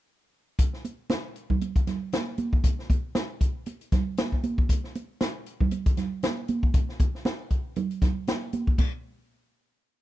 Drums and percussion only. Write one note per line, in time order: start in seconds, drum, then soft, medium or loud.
0.59 kick loud
0.59 closed hi-hat loud
0.74 snare soft
0.85 closed hi-hat medium
0.85 muted conga soft
1.10 snare loud
1.10 closed hi-hat medium
1.10 high conga medium
1.36 closed hi-hat medium
1.50 kick medium
1.50 low conga medium
1.61 closed hi-hat medium
1.61 muted conga soft
1.76 kick medium
1.76 closed hi-hat medium
1.87 snare soft
1.87 closed hi-hat medium
1.87 muted conga soft
1.87 low conga medium
2.13 snare loud
2.13 closed hi-hat medium
2.13 high conga medium
2.38 closed hi-hat medium
2.38 high conga medium
2.53 kick medium
2.64 kick loud
2.64 closed hi-hat loud
2.79 snare soft
2.90 kick medium
2.90 closed hi-hat medium
2.90 muted conga medium
3.15 snare medium
3.15 closed hi-hat medium
3.15 high conga medium
3.41 kick medium
3.41 closed hi-hat medium
3.66 closed hi-hat medium
3.66 muted conga soft
3.81 closed hi-hat soft
3.92 kick medium
3.92 snare soft
3.92 closed hi-hat medium
3.92 muted conga soft
3.92 low conga medium
4.17 snare loud
4.17 closed hi-hat loud
4.17 high conga medium
4.32 kick medium
4.43 closed hi-hat medium
4.43 high conga medium
4.58 kick medium
4.69 kick medium
4.69 closed hi-hat loud
4.84 snare soft
4.95 closed hi-hat medium
4.95 muted conga medium
5.21 snare medium
5.21 closed hi-hat medium
5.21 high conga medium
5.46 closed hi-hat medium
5.60 kick medium
5.60 low conga medium
5.71 closed hi-hat medium
5.71 muted conga soft
5.86 kick medium
5.86 closed hi-hat medium
5.97 snare soft
5.97 closed hi-hat medium
5.97 low conga medium
6.23 snare loud
6.23 closed hi-hat medium
6.23 high conga medium
6.48 closed hi-hat medium
6.48 high conga medium
6.63 kick medium
6.74 kick loud
6.74 closed hi-hat loud
6.89 snare soft
7.00 kick loud
7.00 closed hi-hat medium
7.00 muted conga soft
7.15 snare soft
7.25 snare medium
7.25 closed hi-hat medium
7.25 high conga medium
7.50 kick medium
7.50 closed hi-hat medium
7.76 closed hi-hat medium
7.76 muted conga soft
7.76 low conga medium
7.91 closed hi-hat medium
8.02 kick medium
8.02 snare soft
8.02 closed hi-hat medium
8.02 muted conga soft
8.02 low conga medium
8.27 snare loud
8.27 closed hi-hat medium
8.27 high conga medium
8.53 closed hi-hat medium
8.53 high conga medium
8.67 kick medium
8.78 kick loud
8.78 crash medium
8.78 muted conga medium